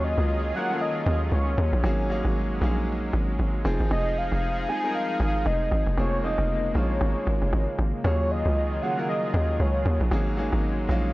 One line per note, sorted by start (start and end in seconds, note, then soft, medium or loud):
0.00 0.16 D#2 loud
0.00 1.82 D#3 medium
0.00 0.41 F#3 medium
0.00 3.61 F#3 medium
0.00 0.41 A#3 medium
0.00 0.41 C#4 medium
0.00 3.61 C#4 medium
0.00 0.41 F4 medium
0.00 1.82 F4 medium
0.00 0.42 G#4 medium
0.00 1.82 G#4 medium
0.00 0.55 D#5 loud
0.18 0.53 C#2 medium
0.54 0.66 F#3 medium
0.54 0.67 A#3 medium
0.54 0.67 C#4 medium
0.54 0.67 F4 medium
0.54 0.67 A#4 medium
0.54 0.83 F#5 loud
0.69 1.51 F#3 medium
0.69 1.52 A#3 medium
0.69 1.52 C#4 medium
0.69 1.52 F4 medium
0.69 0.76 A4 medium
0.78 1.56 A#4 medium
0.78 1.33 D#5 loud
1.06 1.31 D#2 medium
1.32 1.57 C#2 medium
1.32 1.71 C#5 medium
1.58 1.72 D#2 medium
1.73 1.83 A#1 medium
1.84 2.23 G#1 loud
1.84 2.05 F#3 medium
1.84 3.63 G#3 medium
1.84 2.06 A#3 medium
1.84 2.06 C#4 medium
1.84 2.06 D#4 medium
1.84 2.06 G#4 loud
2.10 2.53 F#3 medium
2.10 2.53 A#3 medium
2.10 2.53 C#4 medium
2.10 2.53 D#4 medium
2.10 2.54 G#4 loud
2.25 2.60 G#1 medium
2.61 3.11 A#1 loud
2.61 3.45 F#3 medium
2.61 3.45 A#3 medium
2.61 3.45 C#4 medium
2.61 3.46 D#4 medium
2.61 3.46 G#4 loud
3.13 3.38 G#1 loud
3.39 3.64 G#1 medium
3.64 3.79 F1 loud
3.64 4.48 F3 loud
3.64 5.95 F3 medium
3.64 4.49 G#3 medium
3.64 4.49 C4 medium
3.64 5.95 D#4 medium
3.64 4.49 D#4 medium
3.64 5.95 G#4 loud
3.64 4.49 G#4 loud
3.80 3.90 G#1 medium
3.91 4.30 F1 loud
3.91 4.19 D#5 loud
4.18 4.71 F5 loud
4.32 4.67 F1 medium
4.68 4.80 F3 medium
4.68 4.80 G#3 medium
4.68 4.81 C4 medium
4.68 4.81 D#4 medium
4.68 4.81 G#4 medium
4.68 4.96 G#5 loud
4.83 5.65 F3 medium
4.83 5.65 G#3 medium
4.83 5.66 C4 medium
4.83 5.66 D#4 medium
4.83 5.66 A#4 medium
4.95 5.48 F5 loud
5.20 5.45 G#1 loud
5.46 5.70 F1 loud
5.46 5.87 D#5 loud
5.71 5.86 G#1 medium
5.86 5.97 F1 medium
5.97 6.36 F1 loud
5.97 11.13 C#3 medium
5.97 6.19 F3 medium
5.97 8.02 G#3 medium
5.97 8.02 A#3 medium
5.97 6.19 A#3 medium
5.97 6.19 C4 medium
5.97 6.20 C#4 medium
5.97 6.20 G#4 medium
5.97 6.25 C#5 loud
6.23 6.66 F3 medium
6.23 6.67 A#3 medium
6.23 6.67 C4 medium
6.23 6.67 C#4 medium
6.23 6.67 D#4 medium
6.23 6.77 D#5 loud
6.38 6.73 F1 loud
6.75 7.00 A#1 loud
6.75 7.59 F3 medium
6.75 7.59 G#3 medium
6.75 7.59 A#3 medium
6.75 7.59 C#4 medium
6.75 7.60 F4 medium
6.75 7.79 C#5 medium
7.01 7.15 G#1 loud
7.27 7.41 G#1 medium
7.42 7.52 F1 medium
7.53 7.67 G#1 loud
7.79 7.93 G#1 loud
8.04 8.43 D#2 loud
8.04 10.09 D#3 medium
8.04 8.68 F#3 medium
8.04 11.13 F#3 medium
8.04 8.68 A#3 medium
8.04 8.69 C#4 medium
8.04 10.09 F4 medium
8.04 8.69 F4 medium
8.04 10.09 G#4 medium
8.04 8.69 G#4 medium
8.04 8.33 C#5 medium
8.31 8.84 D#5 loud
8.45 8.80 C#2 medium
8.82 8.94 F#3 medium
8.82 8.94 A#3 medium
8.82 8.94 C#4 medium
8.82 8.95 F4 medium
8.82 8.95 G#4 medium
8.82 9.08 F#5 loud
8.97 9.79 F#3 medium
8.97 9.79 A#3 medium
8.97 9.79 C#4 medium
8.97 9.80 F4 medium
8.97 9.80 A#4 medium
9.09 9.62 D#5 loud
9.34 9.58 D#2 medium
9.60 9.84 C#2 loud
9.60 10.01 C#5 medium
9.85 10.00 D#2 loud
10.01 10.11 A#1 medium
10.11 10.50 G#1 loud
10.11 10.33 F#3 medium
10.11 11.13 G#3 medium
10.11 10.33 A#3 medium
10.11 10.33 C#4 medium
10.11 10.34 D#4 medium
10.11 10.34 G#4 loud
10.37 10.80 F#3 medium
10.37 10.80 A#3 medium
10.37 10.81 C#4 medium
10.37 10.81 D#4 medium
10.37 10.81 G#4 loud
10.52 10.87 G#1 loud
10.89 11.13 A#1 loud
10.89 11.13 F#3 medium
10.89 11.13 A#3 medium
10.89 11.13 C#4 medium
10.89 11.13 D#4 medium
10.89 11.13 F4 loud